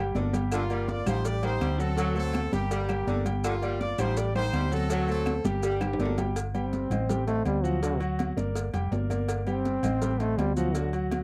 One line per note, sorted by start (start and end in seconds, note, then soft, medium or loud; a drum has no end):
0.00 0.11 G1 loud
0.00 0.12 G3 medium
0.00 0.12 G4 medium
0.00 0.12 G5 loud
0.15 1.01 G1 loud
0.15 0.35 D3 medium
0.15 0.30 A#3 medium
0.15 0.30 A#4 medium
0.15 0.30 D5 medium
0.15 cowbell medium
0.15 high conga medium
0.15 low timbale medium
0.15 maracas soft
0.33 0.63 G3 medium
0.33 0.63 G4 medium
0.33 0.64 G5 medium
0.33 cowbell medium
0.33 high conga medium
0.33 low agogo medium
0.33 maracas medium
0.51 0.62 D3 loud
0.51 0.87 A#3 medium
0.51 0.86 F4 medium
0.51 cowbell loud
0.51 low agogo loud
0.51 claves medium
0.51 maracas medium
0.70 0.90 G3 medium
0.70 1.00 A#3 medium
0.70 1.00 A#4 medium
0.70 1.00 D5 medium
0.70 high conga soft
0.70 low agogo medium
0.70 maracas soft
0.88 1.07 F4 medium
0.88 1.07 D5 loud
0.88 cowbell medium
0.88 high conga medium
0.88 maracas soft
1.06 1.57 A1 loud
1.06 1.26 F3 medium
1.06 1.36 G3 medium
1.06 1.24 D#4 medium
1.06 1.37 G4 medium
1.06 1.24 C5 medium
1.06 1.37 G5 medium
1.06 cowbell medium
1.06 high conga soft
1.06 low conga medium
1.06 low agogo loud
1.06 claves medium
1.06 maracas medium
1.25 1.43 G4 medium
1.25 1.43 D5 loud
1.25 cowbell loud
1.25 high conga soft
1.25 maracas loud
1.43 1.53 D#3 medium
1.43 1.73 G3 medium
1.43 1.78 D#4 medium
1.43 1.73 G4 medium
1.43 1.77 C5 loud
1.43 1.73 G5 medium
1.43 cowbell medium
1.43 high conga soft
1.43 low agogo loud
1.43 maracas soft
1.61 2.47 D2 loud
1.61 1.80 G3 medium
1.61 cowbell medium
1.61 high conga medium
1.61 low agogo loud
1.61 claves medium
1.61 maracas soft
1.78 1.94 F#3 loud
1.78 2.15 C4 medium
1.78 1.94 F#4 medium
1.78 2.15 A4 loud
1.78 1.94 F#5 loud
1.78 maracas medium
1.97 2.12 F#3 loud
1.97 2.41 F#3 loud
1.97 2.12 F#4 medium
1.97 2.12 F#5 medium
1.97 cowbell loud
1.97 high conga soft
1.97 low agogo loud
1.97 maracas medium
2.15 2.45 A3 medium
2.15 2.50 C4 medium
2.15 2.45 A4 medium
2.15 2.50 A4 loud
2.15 2.46 C5 medium
2.15 high conga soft
2.15 low agogo medium
2.15 maracas soft
2.33 cowbell medium
2.33 high conga loud
2.33 low agogo loud
2.33 claves medium
2.33 maracas soft
2.52 3.03 G1 loud
2.52 2.83 G3 loud
2.52 3.22 A#3 medium
2.52 2.83 G4 medium
2.52 3.22 G4 medium
2.52 2.83 G5 medium
2.52 cowbell medium
2.52 high conga loud
2.52 maracas medium
2.71 2.90 G3 medium
2.71 cowbell loud
2.71 high conga soft
2.71 low agogo medium
2.71 maracas medium
2.89 3.04 G3 medium
2.89 3.04 G4 medium
2.89 3.04 G5 medium
2.89 cowbell medium
2.89 high conga soft
2.89 low agogo loud
2.89 claves medium
2.89 maracas soft
3.07 3.93 G1 medium
3.07 3.27 D3 medium
3.07 3.22 A#3 medium
3.07 3.22 A#4 medium
3.07 3.22 D5 medium
3.07 cowbell medium
3.07 high conga medium
3.07 maracas soft
3.26 3.56 G3 medium
3.26 3.56 G4 medium
3.26 3.56 G5 loud
3.26 cowbell medium
3.26 high conga medium
3.26 low agogo loud
3.26 maracas medium
3.44 3.54 D3 loud
3.44 3.78 A#3 medium
3.44 3.78 F4 loud
3.44 cowbell loud
3.44 high conga soft
3.44 low agogo loud
3.44 claves medium
3.44 maracas medium
3.62 3.82 G3 medium
3.62 3.92 A#3 medium
3.62 3.92 A#4 medium
3.62 3.92 D5 medium
3.62 high conga soft
3.62 low agogo medium
3.62 maracas soft
3.80 3.97 F4 medium
3.80 3.97 D5 loud
3.80 cowbell medium
3.80 high conga medium
3.80 maracas soft
3.98 4.49 A1 medium
3.98 4.18 F3 medium
3.98 4.28 G3 loud
3.98 4.17 D#4 medium
3.98 4.29 G4 medium
3.98 4.17 C5 loud
3.98 4.29 G5 medium
3.98 cowbell medium
3.98 high conga soft
3.98 low conga medium
3.98 low agogo loud
3.98 claves medium
3.98 maracas medium
4.17 4.35 G4 medium
4.17 4.35 D5 loud
4.17 cowbell loud
4.17 high conga soft
4.17 maracas medium
4.35 4.45 D#3 medium
4.35 4.65 G3 medium
4.35 4.69 D#4 medium
4.35 4.65 G4 medium
4.35 4.69 C5 loud
4.35 4.65 G5 medium
4.35 cowbell medium
4.35 high conga soft
4.35 low agogo medium
4.35 maracas soft
4.53 5.39 D2 loud
4.53 4.73 G3 medium
4.53 cowbell medium
4.53 high conga medium
4.53 low agogo loud
4.53 claves medium
4.53 maracas soft
4.71 4.87 F#3 loud
4.71 5.06 C4 medium
4.71 4.87 F#4 medium
4.71 5.06 A4 loud
4.71 4.87 F#5 medium
4.71 high conga medium
4.71 maracas medium
4.90 5.05 F#3 loud
4.90 5.33 F#3 loud
4.90 5.05 F#4 medium
4.90 5.05 F#5 medium
4.90 cowbell loud
4.90 low agogo medium
4.90 maracas loud
5.08 5.38 A3 medium
5.08 5.43 C4 medium
5.08 5.38 A4 medium
5.08 5.42 A4 medium
5.08 5.38 C5 medium
5.08 high conga soft
5.08 low agogo medium
5.08 maracas soft
5.26 cowbell medium
5.26 high conga loud
5.26 low agogo loud
5.26 claves medium
5.26 maracas soft
5.44 5.95 G1 loud
5.44 5.75 G3 loud
5.44 6.14 A#3 medium
5.44 5.75 G4 medium
5.44 6.14 G4 medium
5.44 5.75 G5 medium
5.44 cowbell medium
5.44 high conga loud
5.44 maracas medium
5.62 5.82 G3 medium
5.62 cowbell loud
5.62 high conga soft
5.62 low agogo medium
5.62 maracas medium
5.81 5.96 G3 medium
5.81 5.96 G4 medium
5.81 5.97 G5 medium
5.81 cowbell medium
5.81 high conga soft
5.81 high timbale medium
5.81 low agogo loud
5.81 claves medium
5.81 maracas soft
5.93 high timbale loud
5.99 6.85 G1 loud
5.99 6.19 D3 medium
5.99 6.14 A#3 medium
5.99 6.15 A#4 medium
5.99 6.15 D5 medium
5.99 cowbell medium
5.99 high conga medium
5.99 maracas soft
6.05 low timbale medium
6.18 6.33 G3 medium
6.18 6.33 G4 medium
6.18 6.33 G5 medium
6.18 cowbell medium
6.18 high conga medium
6.18 low timbale medium
6.18 low agogo loud
6.18 maracas medium
6.36 cowbell loud
6.36 high conga soft
6.36 low agogo loud
6.36 maracas medium
6.54 6.84 G3 medium
6.54 7.25 C4 medium
6.54 6.85 G4 medium
6.54 6.85 G5 medium
6.54 high conga soft
6.54 low agogo loud
6.54 maracas soft
6.73 cowbell medium
6.73 high conga medium
6.73 maracas soft
6.90 7.41 A1 medium
6.90 7.06 C4 medium
6.90 7.06 C5 medium
6.90 7.07 D#5 medium
6.90 cowbell medium
6.90 high conga soft
6.90 low conga medium
6.90 low agogo loud
6.90 maracas medium
7.09 7.24 G3 medium
7.09 7.24 G4 medium
7.09 7.25 G5 medium
7.09 cowbell loud
7.09 high conga soft
7.09 low conga medium
7.09 maracas medium
7.27 7.45 A3 loud
7.27 7.57 C4 medium
7.27 7.57 C5 medium
7.27 7.58 D#5 medium
7.27 cowbell medium
7.27 high conga soft
7.27 low agogo medium
7.27 maracas soft
7.45 8.31 D2 loud
7.45 7.65 G3 loud
7.45 cowbell medium
7.45 high conga medium
7.45 low agogo loud
7.45 maracas soft
7.63 7.81 F3 medium
7.63 7.79 F#3 medium
7.63 7.79 F#4 medium
7.63 7.79 F#5 loud
7.63 maracas medium
7.82 8.00 D3 medium
7.82 7.97 F#3 medium
7.82 7.97 F#4 medium
7.82 7.98 F#5 medium
7.82 cowbell loud
7.82 high conga soft
7.82 low agogo medium
7.82 maracas medium
8.00 8.30 F#3 medium
8.00 8.30 F#4 medium
8.00 8.30 F#5 medium
8.00 high conga soft
8.00 low agogo loud
8.00 maracas soft
8.19 cowbell medium
8.19 high conga loud
8.19 low agogo loud
8.19 maracas soft
8.37 8.71 G1 medium
8.37 8.67 A#3 medium
8.37 8.67 A#4 medium
8.37 8.67 D5 medium
8.37 cowbell medium
8.37 high conga loud
8.37 maracas medium
8.55 cowbell loud
8.55 high conga soft
8.55 low agogo medium
8.55 maracas medium
8.73 8.91 F1 medium
8.73 8.88 G3 medium
8.73 8.89 G4 medium
8.73 8.89 G5 medium
8.73 cowbell medium
8.73 high conga soft
8.73 low agogo loud
8.73 maracas soft
8.91 9.77 G1 loud
8.91 9.07 A#3 medium
8.91 9.07 A#4 medium
8.91 9.07 D5 medium
8.91 cowbell medium
8.91 high conga medium
8.91 low timbale medium
8.91 maracas soft
9.10 9.40 A#3 medium
9.10 9.40 A#4 medium
9.10 9.40 D5 medium
9.10 cowbell medium
9.10 high conga medium
9.10 low agogo medium
9.10 maracas medium
9.28 cowbell loud
9.28 low agogo loud
9.28 maracas medium
9.46 9.77 G3 medium
9.46 10.21 C4 loud
9.46 9.77 G4 medium
9.46 9.77 G5 medium
9.46 high conga soft
9.46 low agogo medium
9.46 maracas soft
9.65 cowbell medium
9.65 high conga medium
9.65 maracas soft
9.83 10.34 A1 loud
9.83 9.99 C4 medium
9.83 9.99 C5 medium
9.83 9.99 D#5 medium
9.83 cowbell medium
9.83 high conga soft
9.83 low conga medium
9.83 low agogo loud
9.83 maracas medium
10.02 10.17 G3 medium
10.02 10.17 G4 medium
10.02 10.17 G5 medium
10.02 cowbell loud
10.02 high conga soft
10.02 maracas medium
10.19 10.39 A3 loud
10.19 10.50 C4 medium
10.19 10.50 C5 medium
10.19 10.50 D#5 medium
10.19 cowbell medium
10.19 high conga soft
10.19 low agogo medium
10.19 maracas soft
10.37 11.23 D2 medium
10.37 10.55 G3 loud
10.37 cowbell medium
10.37 high conga medium
10.37 low timbale medium
10.37 low agogo loud
10.37 maracas soft
10.56 10.76 F3 medium
10.56 10.72 F#3 medium
10.56 10.72 F#4 medium
10.56 10.72 F#5 medium
10.56 high conga medium
10.56 maracas medium
10.75 10.93 D3 medium
10.75 10.90 F#3 medium
10.75 10.90 F#4 medium
10.75 10.90 F#5 medium
10.75 cowbell loud
10.75 high conga soft
10.75 low agogo medium
10.75 maracas loud
10.93 11.23 F#3 medium
10.93 11.23 F#4 medium
10.93 11.23 F#5 medium
10.93 high conga soft
10.93 low agogo loud
10.93 maracas soft
11.11 cowbell medium
11.11 high conga loud
11.11 low agogo loud
11.11 maracas soft